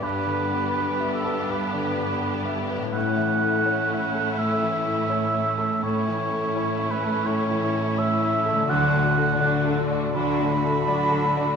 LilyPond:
<<
  \new Staff \with { instrumentName = "Oboe" } { \time 4/4 \key a \mixolydian \tempo 4 = 83 b'4. a'8 b'4. r8 | fis''2 e''2 | cis''4. b'8 cis''4 e''4 | fis''4. r8 b''2 | }
  \new Staff \with { instrumentName = "Grand piano" } { \time 4/4 \key a \mixolydian \tuplet 3/2 { <g, b'>8 d8 b8 b'8 e''8 b'8 g,8 d8 b8 b'8 e''8 b'8 } | \tuplet 3/2 { a,8 e8 a8 cis''8 e''8 a'8 a,8 e8 a8 cis''8 e''8 a'8 } | \tuplet 3/2 { a,8 e8 a8 cis''8 e''8 a'8 a,8 e8 a8 cis''8 e''8 a'8 } | \tuplet 3/2 { d,8 a,8 a8 d''8 a'8 d''8 d,8 a,8 a8 d''8 a'8 d''8 } | }
  \new Staff \with { instrumentName = "Violin section" } { \time 4/4 \key a \mixolydian g'1 | e'1 | e'1 | fis'8 d'8 fis'8 d'8 fis'8 d'8 fis'8 d'8 | }
  \new Staff \with { instrumentName = "Viola section" } { \time 4/4 \key a \mixolydian <b d'>1 | <a cis'>1 | <a cis'>1 | <fis d'>8 <a fis'>8 <fis d'>8 <a fis'>8 <fis d'>8 <a fis'>8 <fis d'>8 <a fis'>8 | }
  \new Staff \with { instrumentName = "Harp" } { \time 4/4 \key a \mixolydian g,1 | <a, a e' cis''>1~ | <a, a e' cis''>1 | <d a d' d''>1 | }
  \new Staff \with { instrumentName = "Cello section" } { \clef bass \time 4/4 \key a \mixolydian g,1 | a,1 | a,1 | d4 d4 d4 d4 | }
>>